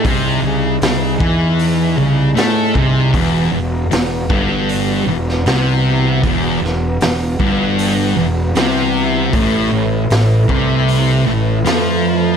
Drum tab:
HH |o---o---o---o---|o---o---o---o---|o---o---o---o---|o---o---o---o---|
SD |----o-------o---|----o------oo---|--o-o-------o---|----o-------o---|
BD |o-----o-------o-|o-----o---------|o-----o---------|o-----o---------|